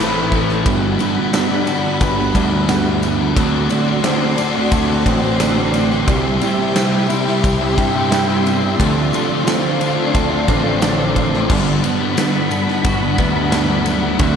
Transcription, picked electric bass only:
0, 0, Header, 1, 2, 480
1, 0, Start_track
1, 0, Key_signature, 1, "major"
1, 0, Tempo, 677201
1, 467, Time_signature, 4, 2, 24, 8
1, 10179, End_track
2, 0, Start_track
2, 0, Title_t, "Picked electric bass"
2, 0, Program_c, 0, 34
2, 0, Note_on_c, 0, 33, 90
2, 435, Note_off_c, 0, 33, 0
2, 466, Note_on_c, 0, 31, 83
2, 683, Note_off_c, 0, 31, 0
2, 1423, Note_on_c, 0, 31, 90
2, 1642, Note_off_c, 0, 31, 0
2, 1666, Note_on_c, 0, 38, 88
2, 2358, Note_off_c, 0, 38, 0
2, 2386, Note_on_c, 0, 38, 98
2, 2603, Note_off_c, 0, 38, 0
2, 3344, Note_on_c, 0, 38, 90
2, 3562, Note_off_c, 0, 38, 0
2, 3586, Note_on_c, 0, 33, 83
2, 4279, Note_off_c, 0, 33, 0
2, 4306, Note_on_c, 0, 36, 89
2, 4524, Note_off_c, 0, 36, 0
2, 5272, Note_on_c, 0, 36, 87
2, 5488, Note_off_c, 0, 36, 0
2, 5515, Note_on_c, 0, 43, 93
2, 6204, Note_off_c, 0, 43, 0
2, 6235, Note_on_c, 0, 38, 88
2, 6450, Note_off_c, 0, 38, 0
2, 7191, Note_on_c, 0, 38, 82
2, 7407, Note_off_c, 0, 38, 0
2, 7430, Note_on_c, 0, 33, 83
2, 8120, Note_off_c, 0, 33, 0
2, 8150, Note_on_c, 0, 31, 92
2, 8366, Note_off_c, 0, 31, 0
2, 9107, Note_on_c, 0, 31, 80
2, 9323, Note_off_c, 0, 31, 0
2, 9347, Note_on_c, 0, 38, 85
2, 10035, Note_off_c, 0, 38, 0
2, 10061, Note_on_c, 0, 38, 93
2, 10179, Note_off_c, 0, 38, 0
2, 10179, End_track
0, 0, End_of_file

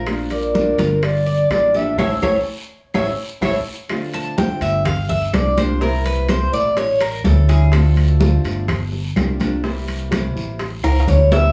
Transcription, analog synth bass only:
0, 0, Header, 1, 2, 480
1, 0, Start_track
1, 0, Key_signature, -1, "minor"
1, 0, Tempo, 478469
1, 68, Time_signature, 4, 2, 24, 8
1, 11559, End_track
2, 0, Start_track
2, 0, Title_t, "Analog synth bass"
2, 0, Program_c, 0, 38
2, 0, Note_on_c, 0, 34, 94
2, 727, Note_off_c, 0, 34, 0
2, 782, Note_on_c, 0, 31, 93
2, 1466, Note_off_c, 0, 31, 0
2, 1504, Note_on_c, 0, 33, 90
2, 1954, Note_off_c, 0, 33, 0
2, 1981, Note_on_c, 0, 33, 93
2, 2164, Note_off_c, 0, 33, 0
2, 2230, Note_on_c, 0, 33, 96
2, 2409, Note_off_c, 0, 33, 0
2, 2954, Note_on_c, 0, 33, 97
2, 3132, Note_off_c, 0, 33, 0
2, 3424, Note_on_c, 0, 33, 98
2, 3607, Note_off_c, 0, 33, 0
2, 4624, Note_on_c, 0, 31, 90
2, 5309, Note_off_c, 0, 31, 0
2, 5345, Note_on_c, 0, 36, 91
2, 6486, Note_off_c, 0, 36, 0
2, 6547, Note_on_c, 0, 33, 91
2, 7231, Note_off_c, 0, 33, 0
2, 7269, Note_on_c, 0, 38, 99
2, 8407, Note_off_c, 0, 38, 0
2, 8468, Note_on_c, 0, 31, 90
2, 9151, Note_off_c, 0, 31, 0
2, 9190, Note_on_c, 0, 36, 91
2, 10327, Note_off_c, 0, 36, 0
2, 10390, Note_on_c, 0, 33, 93
2, 10837, Note_off_c, 0, 33, 0
2, 10871, Note_on_c, 0, 37, 75
2, 11095, Note_off_c, 0, 37, 0
2, 11107, Note_on_c, 0, 38, 95
2, 11559, Note_off_c, 0, 38, 0
2, 11559, End_track
0, 0, End_of_file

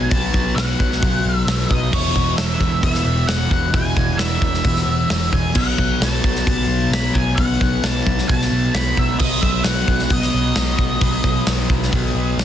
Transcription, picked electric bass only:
0, 0, Header, 1, 2, 480
1, 0, Start_track
1, 0, Tempo, 454545
1, 115, Time_signature, 4, 2, 24, 8
1, 13144, End_track
2, 0, Start_track
2, 0, Title_t, "Picked electric bass"
2, 0, Program_c, 0, 34
2, 122, Note_on_c, 0, 35, 104
2, 303, Note_off_c, 0, 35, 0
2, 361, Note_on_c, 0, 35, 89
2, 543, Note_off_c, 0, 35, 0
2, 595, Note_on_c, 0, 35, 98
2, 780, Note_off_c, 0, 35, 0
2, 848, Note_on_c, 0, 35, 97
2, 1027, Note_off_c, 0, 35, 0
2, 1085, Note_on_c, 0, 35, 87
2, 1265, Note_off_c, 0, 35, 0
2, 1325, Note_on_c, 0, 35, 92
2, 1505, Note_off_c, 0, 35, 0
2, 1552, Note_on_c, 0, 35, 100
2, 1737, Note_off_c, 0, 35, 0
2, 1801, Note_on_c, 0, 35, 89
2, 1983, Note_off_c, 0, 35, 0
2, 2037, Note_on_c, 0, 28, 107
2, 2220, Note_off_c, 0, 28, 0
2, 2273, Note_on_c, 0, 28, 93
2, 2458, Note_off_c, 0, 28, 0
2, 2511, Note_on_c, 0, 28, 97
2, 2696, Note_off_c, 0, 28, 0
2, 2749, Note_on_c, 0, 28, 101
2, 2935, Note_off_c, 0, 28, 0
2, 2987, Note_on_c, 0, 28, 87
2, 3173, Note_off_c, 0, 28, 0
2, 3224, Note_on_c, 0, 28, 89
2, 3412, Note_off_c, 0, 28, 0
2, 3707, Note_on_c, 0, 28, 88
2, 3893, Note_off_c, 0, 28, 0
2, 3945, Note_on_c, 0, 28, 97
2, 4132, Note_off_c, 0, 28, 0
2, 4192, Note_on_c, 0, 28, 89
2, 4376, Note_off_c, 0, 28, 0
2, 4417, Note_on_c, 0, 28, 96
2, 4606, Note_off_c, 0, 28, 0
2, 4667, Note_on_c, 0, 28, 94
2, 4853, Note_off_c, 0, 28, 0
2, 4911, Note_on_c, 0, 28, 86
2, 5095, Note_off_c, 0, 28, 0
2, 5130, Note_on_c, 0, 28, 84
2, 5322, Note_off_c, 0, 28, 0
2, 5387, Note_on_c, 0, 28, 95
2, 5573, Note_off_c, 0, 28, 0
2, 5630, Note_on_c, 0, 28, 93
2, 5814, Note_off_c, 0, 28, 0
2, 5862, Note_on_c, 0, 35, 96
2, 6049, Note_off_c, 0, 35, 0
2, 6103, Note_on_c, 0, 35, 89
2, 6290, Note_off_c, 0, 35, 0
2, 6344, Note_on_c, 0, 35, 94
2, 6531, Note_off_c, 0, 35, 0
2, 6590, Note_on_c, 0, 35, 92
2, 6774, Note_off_c, 0, 35, 0
2, 6829, Note_on_c, 0, 35, 82
2, 7014, Note_off_c, 0, 35, 0
2, 7049, Note_on_c, 0, 35, 88
2, 7241, Note_off_c, 0, 35, 0
2, 7292, Note_on_c, 0, 35, 96
2, 7483, Note_off_c, 0, 35, 0
2, 7551, Note_on_c, 0, 35, 88
2, 7735, Note_off_c, 0, 35, 0
2, 7791, Note_on_c, 0, 35, 101
2, 7975, Note_off_c, 0, 35, 0
2, 8038, Note_on_c, 0, 35, 87
2, 8219, Note_off_c, 0, 35, 0
2, 8268, Note_on_c, 0, 35, 95
2, 8453, Note_off_c, 0, 35, 0
2, 8512, Note_on_c, 0, 35, 98
2, 8696, Note_off_c, 0, 35, 0
2, 8760, Note_on_c, 0, 35, 89
2, 8940, Note_off_c, 0, 35, 0
2, 8992, Note_on_c, 0, 35, 93
2, 9176, Note_off_c, 0, 35, 0
2, 9234, Note_on_c, 0, 35, 95
2, 9417, Note_off_c, 0, 35, 0
2, 9481, Note_on_c, 0, 35, 91
2, 9661, Note_off_c, 0, 35, 0
2, 9713, Note_on_c, 0, 35, 108
2, 9896, Note_off_c, 0, 35, 0
2, 9955, Note_on_c, 0, 35, 93
2, 10138, Note_off_c, 0, 35, 0
2, 10184, Note_on_c, 0, 35, 99
2, 10371, Note_off_c, 0, 35, 0
2, 10434, Note_on_c, 0, 35, 99
2, 10617, Note_off_c, 0, 35, 0
2, 10666, Note_on_c, 0, 35, 85
2, 10853, Note_off_c, 0, 35, 0
2, 10920, Note_on_c, 0, 35, 91
2, 11101, Note_off_c, 0, 35, 0
2, 11157, Note_on_c, 0, 35, 97
2, 11339, Note_off_c, 0, 35, 0
2, 11388, Note_on_c, 0, 35, 93
2, 11574, Note_off_c, 0, 35, 0
2, 11633, Note_on_c, 0, 35, 97
2, 11817, Note_off_c, 0, 35, 0
2, 11862, Note_on_c, 0, 35, 87
2, 12050, Note_off_c, 0, 35, 0
2, 12110, Note_on_c, 0, 35, 99
2, 12296, Note_off_c, 0, 35, 0
2, 12353, Note_on_c, 0, 35, 98
2, 12538, Note_off_c, 0, 35, 0
2, 12590, Note_on_c, 0, 35, 90
2, 12776, Note_off_c, 0, 35, 0
2, 12826, Note_on_c, 0, 35, 94
2, 13013, Note_off_c, 0, 35, 0
2, 13069, Note_on_c, 0, 35, 91
2, 13144, Note_off_c, 0, 35, 0
2, 13144, End_track
0, 0, End_of_file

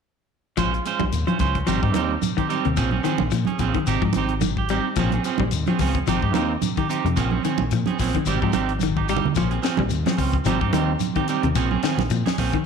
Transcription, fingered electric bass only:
0, 0, Header, 1, 3, 480
1, 0, Start_track
1, 0, Tempo, 549602
1, 496, Time_signature, 4, 2, 24, 8
1, 11056, End_track
2, 0, Start_track
2, 0, Title_t, "Fingered electric bass"
2, 0, Program_c, 0, 33
2, 504, Note_on_c, 0, 34, 81
2, 686, Note_off_c, 0, 34, 0
2, 881, Note_on_c, 0, 34, 74
2, 959, Note_off_c, 0, 34, 0
2, 980, Note_on_c, 0, 39, 68
2, 1081, Note_off_c, 0, 39, 0
2, 1222, Note_on_c, 0, 37, 74
2, 1405, Note_off_c, 0, 37, 0
2, 1463, Note_on_c, 0, 32, 77
2, 1563, Note_off_c, 0, 32, 0
2, 1597, Note_on_c, 0, 44, 77
2, 1699, Note_off_c, 0, 44, 0
2, 1699, Note_on_c, 0, 39, 73
2, 1883, Note_off_c, 0, 39, 0
2, 2319, Note_on_c, 0, 39, 73
2, 2398, Note_off_c, 0, 39, 0
2, 2425, Note_on_c, 0, 34, 86
2, 2607, Note_off_c, 0, 34, 0
2, 2794, Note_on_c, 0, 34, 71
2, 2875, Note_off_c, 0, 34, 0
2, 2902, Note_on_c, 0, 46, 66
2, 3003, Note_off_c, 0, 46, 0
2, 3140, Note_on_c, 0, 34, 70
2, 3241, Note_off_c, 0, 34, 0
2, 3381, Note_on_c, 0, 32, 80
2, 3482, Note_off_c, 0, 32, 0
2, 3509, Note_on_c, 0, 44, 71
2, 3592, Note_off_c, 0, 44, 0
2, 3624, Note_on_c, 0, 32, 77
2, 4177, Note_off_c, 0, 32, 0
2, 4338, Note_on_c, 0, 34, 98
2, 4523, Note_off_c, 0, 34, 0
2, 4712, Note_on_c, 0, 34, 79
2, 4794, Note_off_c, 0, 34, 0
2, 4819, Note_on_c, 0, 39, 68
2, 4921, Note_off_c, 0, 39, 0
2, 5062, Note_on_c, 0, 37, 81
2, 5245, Note_off_c, 0, 37, 0
2, 5298, Note_on_c, 0, 32, 87
2, 5400, Note_off_c, 0, 32, 0
2, 5438, Note_on_c, 0, 44, 72
2, 5535, Note_off_c, 0, 44, 0
2, 5535, Note_on_c, 0, 39, 78
2, 5721, Note_off_c, 0, 39, 0
2, 6151, Note_on_c, 0, 41, 80
2, 6234, Note_off_c, 0, 41, 0
2, 6266, Note_on_c, 0, 34, 94
2, 6448, Note_off_c, 0, 34, 0
2, 6635, Note_on_c, 0, 34, 70
2, 6716, Note_off_c, 0, 34, 0
2, 6742, Note_on_c, 0, 46, 70
2, 6843, Note_off_c, 0, 46, 0
2, 6982, Note_on_c, 0, 34, 76
2, 7083, Note_off_c, 0, 34, 0
2, 7219, Note_on_c, 0, 32, 86
2, 7321, Note_off_c, 0, 32, 0
2, 7354, Note_on_c, 0, 44, 73
2, 7435, Note_off_c, 0, 44, 0
2, 7461, Note_on_c, 0, 32, 71
2, 8016, Note_off_c, 0, 32, 0
2, 8179, Note_on_c, 0, 34, 83
2, 8364, Note_off_c, 0, 34, 0
2, 8549, Note_on_c, 0, 34, 74
2, 8632, Note_off_c, 0, 34, 0
2, 8653, Note_on_c, 0, 39, 70
2, 8757, Note_off_c, 0, 39, 0
2, 8897, Note_on_c, 0, 37, 71
2, 9083, Note_off_c, 0, 37, 0
2, 9129, Note_on_c, 0, 32, 96
2, 9235, Note_off_c, 0, 32, 0
2, 9271, Note_on_c, 0, 44, 76
2, 9374, Note_off_c, 0, 44, 0
2, 9374, Note_on_c, 0, 39, 72
2, 9561, Note_off_c, 0, 39, 0
2, 9985, Note_on_c, 0, 39, 82
2, 10070, Note_off_c, 0, 39, 0
2, 10097, Note_on_c, 0, 34, 90
2, 10283, Note_off_c, 0, 34, 0
2, 10457, Note_on_c, 0, 34, 78
2, 10545, Note_off_c, 0, 34, 0
2, 10567, Note_on_c, 0, 46, 74
2, 10674, Note_off_c, 0, 46, 0
2, 10819, Note_on_c, 0, 34, 81
2, 10921, Note_off_c, 0, 34, 0
2, 11056, End_track
3, 0, Start_track
3, 0, Title_t, "Muted fingered electric bass strokes"
3, 6501, Note_on_c, 9, 29, 32
3, 6588, Note_off_c, 9, 29, 0
3, 10332, Note_on_c, 9, 29, 34
3, 10419, Note_off_c, 9, 29, 0
3, 11056, End_track
0, 0, End_of_file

